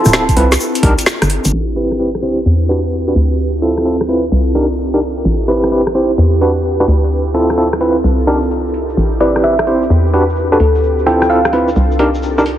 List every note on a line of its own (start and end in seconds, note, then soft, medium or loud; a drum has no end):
0.00 0.12 C4 medium
0.00 0.59 C4 medium
0.00 0.12 E4 medium
0.00 0.59 E4 medium
0.00 0.12 F4 medium
0.00 0.59 F4 medium
0.00 0.12 A4 medium
0.00 0.59 A4 medium
0.00 0.29 A5 medium
0.05 0.34 D1 loud
0.05 cross-stick soft
0.05 open hi-hat medium
0.05 shaker medium
0.13 0.23 C4 medium
0.13 0.23 E4 medium
0.13 0.23 F4 medium
0.13 0.23 A4 medium
0.13 snare loud
0.29 kick medium
0.29 closed hi-hat medium
0.29 shaker soft
0.37 0.57 C2 medium
0.37 0.52 C4 medium
0.37 0.52 E4 medium
0.37 0.52 F4 medium
0.37 0.52 B4 medium
0.37 open hi-hat loud
0.52 snare medium
0.52 closed hi-hat medium
0.52 shaker medium
0.60 1.52 D4 medium
0.60 1.52 D#4 medium
0.60 1.52 G4 medium
0.60 1.52 A#4 medium
0.60 shaker medium
0.75 closed hi-hat medium
0.75 shaker soft
0.83 0.95 C2 loud
0.83 0.93 D4 medium
0.83 0.93 D#4 medium
0.83 0.93 G4 medium
0.83 0.93 A#4 loud
0.83 kick loud
0.83 open hi-hat loud
0.99 closed hi-hat medium
0.99 shaker medium
1.06 snare loud
1.06 shaker medium
1.22 1.38 G1 medium
1.22 cross-stick medium
1.22 closed hi-hat soft
1.22 shaker soft
1.30 open hi-hat loud
1.45 1.51 G1 medium
1.45 closed hi-hat medium
1.45 shaker medium
1.53 2.44 A1 medium
1.53 2.45 C4 medium
1.53 2.45 E4 medium
1.53 2.45 G4 medium
1.53 2.45 B4 medium
1.53 shaker medium
1.76 1.98 C4 medium
1.76 1.98 E4 medium
1.76 1.98 G4 medium
1.76 1.98 B4 medium
1.76 open hi-hat loud
1.91 cross-stick soft
1.99 2.09 C4 medium
1.99 2.09 E4 medium
1.99 2.09 G4 medium
1.99 2.09 B4 medium
1.99 shaker medium
2.15 cross-stick medium
2.22 2.38 C4 medium
2.22 2.38 E4 medium
2.22 2.38 G4 medium
2.22 2.38 C5 medium
2.22 open hi-hat loud
2.37 shaker medium
2.46 3.14 E2 medium
2.46 shaker medium
2.69 2.79 D4 medium
2.69 2.79 F#4 medium
2.69 2.79 G4 medium
2.69 2.79 B4 medium
2.69 open hi-hat loud
2.85 shaker medium
2.92 shaker medium
3.08 3.13 D4 medium
3.08 3.13 F#4 medium
3.08 3.13 G4 medium
3.08 3.13 B4 medium
3.08 shaker soft
3.15 4.30 D2 medium
3.15 4.31 C4 medium
3.15 4.31 E4 medium
3.15 4.31 F4 medium
3.15 4.31 A4 medium
3.15 open hi-hat loud
3.31 shaker medium
3.40 shaker medium
3.54 shaker soft
3.62 3.84 C4 medium
3.62 3.84 E4 medium
3.62 3.84 F4 medium
3.62 3.84 A4 medium
3.62 open hi-hat loud
3.78 cross-stick soft
3.78 shaker medium
3.85 3.95 C4 medium
3.85 3.95 E4 medium
3.85 3.95 F4 medium
3.85 3.95 A4 medium
3.85 shaker medium
4.00 cross-stick medium
4.00 shaker soft
4.09 4.24 C4 medium
4.09 4.24 E4 medium
4.09 4.24 F4 medium
4.09 4.24 B4 medium
4.09 open hi-hat medium
4.23 shaker medium
4.32 5.23 C2 medium
4.32 5.24 D4 medium
4.32 5.24 D#4 medium
4.32 6.16 G4 medium
4.32 5.24 A#4 medium
4.32 shaker medium
4.47 shaker soft
4.55 4.65 D4 medium
4.55 4.65 D#4 medium
4.55 4.65 G4 medium
4.55 4.65 A#4 medium
4.55 open hi-hat loud
4.71 shaker medium
4.79 shaker medium
4.94 4.99 D4 medium
4.94 4.99 D#4 medium
4.94 4.99 G4 medium
4.94 4.99 A#4 medium
4.94 shaker soft
5.02 open hi-hat loud
5.16 shaker medium
5.25 6.17 A1 medium
5.25 6.17 C4 medium
5.25 6.17 E4 medium
5.25 6.86 B4 medium
5.25 shaker medium
5.41 shaker soft
5.48 5.70 C4 medium
5.48 5.70 E4 medium
5.48 5.70 G4 medium
5.48 5.70 B4 medium
5.48 open hi-hat medium
5.64 cross-stick soft
5.64 shaker medium
5.71 5.81 C4 medium
5.71 5.81 E4 medium
5.71 5.81 G4 medium
5.71 5.81 B4 medium
5.71 shaker medium
5.87 cross-stick medium
5.87 shaker soft
5.95 6.10 C4 medium
5.95 6.10 E4 medium
5.95 6.10 G4 medium
5.95 6.10 C5 medium
5.95 open hi-hat medium
6.11 shaker medium
6.18 6.86 E2 medium
6.18 shaker medium
6.34 shaker soft
6.41 6.51 D4 medium
6.41 6.51 F#4 medium
6.41 6.51 G4 medium
6.41 6.51 B4 medium
6.41 open hi-hat medium
6.57 shaker medium
6.65 shaker medium
6.80 6.85 D4 medium
6.80 6.85 F#4 medium
6.80 6.85 G4 medium
6.80 6.85 B4 medium
6.80 shaker soft
6.88 8.03 D2 medium
6.88 8.03 C4 medium
6.88 8.03 E4 medium
6.88 8.03 F4 medium
6.88 8.03 A4 medium
6.88 open hi-hat medium
7.04 shaker medium
7.11 shaker medium
7.27 shaker soft
7.34 7.56 C4 medium
7.34 7.56 E4 medium
7.34 7.56 F4 medium
7.34 7.56 A4 medium
7.34 open hi-hat medium
7.50 cross-stick soft
7.50 open hi-hat medium
7.50 shaker medium
7.58 7.67 C4 medium
7.58 7.67 E4 medium
7.58 7.67 F4 medium
7.58 7.67 A4 medium
7.58 shaker medium
7.73 cross-stick medium
7.73 shaker soft
7.81 7.96 C4 medium
7.81 7.96 E4 medium
7.81 7.96 F4 medium
7.81 7.96 B4 medium
7.81 open hi-hat medium
7.97 shaker medium
8.04 8.96 C2 medium
8.04 8.96 D4 medium
8.04 8.96 D#4 medium
8.04 10.57 G4 medium
8.04 8.96 A#4 medium
8.04 shaker medium
8.19 shaker soft
8.27 8.37 D4 medium
8.27 8.37 D#4 medium
8.27 8.37 G4 medium
8.27 8.37 A#4 medium
8.27 open hi-hat medium
8.42 shaker medium
8.51 shaker medium
8.67 shaker soft
8.74 open hi-hat medium
8.89 shaker medium
8.97 9.89 A1 medium
8.97 9.89 C4 medium
8.97 9.89 E4 medium
8.97 10.58 B4 medium
8.97 shaker medium
9.12 shaker soft
9.20 9.42 C4 medium
9.20 9.42 E4 medium
9.20 9.42 G4 medium
9.20 9.42 B4 medium
9.20 9.40 D5 medium
9.20 open hi-hat medium
9.36 cross-stick soft
9.36 shaker medium
9.44 9.53 C4 medium
9.44 9.53 E4 medium
9.44 9.53 G4 medium
9.44 9.53 B4 medium
9.44 9.63 E5 medium
9.44 shaker medium
9.59 cross-stick medium
9.59 shaker soft
9.67 9.82 C4 medium
9.67 9.82 E4 medium
9.67 9.82 G4 medium
9.67 9.82 C5 medium
9.67 open hi-hat medium
9.82 shaker medium
9.90 10.58 E2 medium
9.90 shaker medium
10.07 shaker soft
10.13 10.23 D4 medium
10.13 10.23 F#4 medium
10.13 10.23 G4 medium
10.13 10.23 B4 medium
10.13 open hi-hat medium
10.29 shaker medium
10.36 shaker medium
10.52 10.57 D4 medium
10.52 10.57 F#4 medium
10.52 10.57 G4 medium
10.52 10.66 A4 medium
10.52 10.57 B4 medium
10.52 shaker soft
10.60 11.75 D2 medium
10.60 11.75 C4 medium
10.60 11.75 D4 medium
10.60 11.75 F4 medium
10.60 11.75 A4 medium
10.60 open hi-hat medium
10.75 shaker medium
10.83 shaker medium
10.99 shaker soft
11.06 11.28 C4 medium
11.06 11.28 E4 medium
11.06 11.28 F4 medium
11.06 11.28 A4 medium
11.06 11.16 G5 medium
11.06 open hi-hat loud
11.22 11.27 G5 medium
11.22 cross-stick soft
11.22 shaker medium
11.30 11.39 C4 medium
11.30 11.39 E4 medium
11.30 11.39 F4 medium
11.30 11.39 A4 medium
11.30 11.82 F5 medium
11.30 shaker medium
11.45 cross-stick medium
11.45 shaker soft
11.53 11.68 C4 medium
11.53 11.68 E4 medium
11.53 11.68 F4 medium
11.53 11.68 B4 medium
11.53 open hi-hat medium
11.68 shaker medium
11.76 12.58 C2 medium
11.76 12.58 D4 medium
11.76 12.58 D#4 medium
11.76 12.58 G4 medium
11.76 12.58 A#4 medium
11.76 shaker medium
11.91 shaker soft
11.99 12.09 D4 medium
11.99 12.09 D#4 medium
11.99 12.09 G4 medium
11.99 12.09 A#4 medium
11.99 open hi-hat loud
12.15 shaker medium
12.23 shaker medium
12.38 12.43 D4 medium
12.38 12.43 D#4 medium
12.38 12.43 G4 medium
12.38 12.43 A#4 medium
12.38 shaker soft
12.46 open hi-hat loud